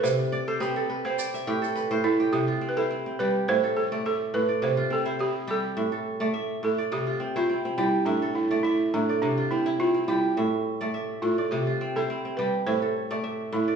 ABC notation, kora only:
X:1
M:4/4
L:1/16
Q:"Swing 16ths" 1/4=105
K:C
V:1 name="Kora"
[Ae] z d c B A B c d e G A B c A G- | G F C c C C G2 e A2 d e3 d- | d F C c C2 G2 e A2 d e3 d- | d F C c C C G2 e A2 d e3 d- |
d F C2 C C G2 e3 d e3 d- | d F C c C C G2 e A2 d e3 d |]
V:2 name="Kora" clef=bass
C,2 z2 C2 z C z2 A,,2 z A,,2 z | C,2 z E2 z G,2 A,,2 z A,2 z A,,2 | C,2 z E2 z G,2 A,,2 z A,2 z A,,2 | C,2 z E2 z G,2 A,,2 z A,2 z A,,2 |
C,2 z E2 z G,2 A,,2 z A,2 z A,,2 | C,2 z E2 z G,2 A,,2 z A,2 z A,,2 |]